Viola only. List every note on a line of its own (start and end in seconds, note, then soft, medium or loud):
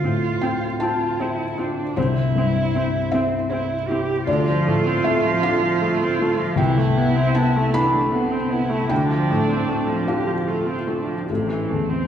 0.04 0.12 C4 medium
0.42 0.50 C4 medium
0.81 0.89 C4 medium
1.20 1.28 C4 medium
1.58 1.66 C4 soft
1.98 2.06 C4 medium
2.37 2.45 C4 medium
2.76 2.84 C4 medium
3.14 3.22 C4 medium
3.52 3.60 C4 medium
3.91 3.99 C4 medium
4.29 4.49 D3 medium
4.48 4.69 F3 medium
4.67 4.88 A3 medium
4.86 5.06 C4 medium
5.04 5.27 A3 medium
5.25 5.45 F3 medium
5.44 5.64 D3 medium
5.62 5.84 F3 medium
5.82 6.04 A3 medium
6.02 6.23 C4 medium
6.21 6.40 A3 medium
6.39 6.58 F3 medium
6.59 6.79 E3 medium
6.77 6.99 A3 medium
6.97 7.17 B3 medium
7.16 7.38 C4 medium
7.37 7.58 B3 medium
7.56 7.76 A3 medium
7.74 7.96 E3 medium
7.94 8.13 A3 medium
8.11 8.33 B3 medium
8.31 8.52 C4 medium
8.50 8.71 B3 medium
8.70 8.89 A3 medium
8.89 9.11 D3 medium
9.09 9.32 F3 medium
9.30 9.51 A3 medium
9.50 9.70 C4 medium
9.68 9.89 A3 medium
9.87 10.09 F3 medium
10.07 10.28 D3 medium
10.26 10.49 F3 medium
10.47 10.68 A3 medium
10.67 10.89 C4 medium
10.87 11.08 A3 medium
11.07 11.27 F3 soft
11.27 11.50 C3 medium
11.49 11.71 E3 medium
11.69 11.91 A3 medium
11.89 12.07 C4 medium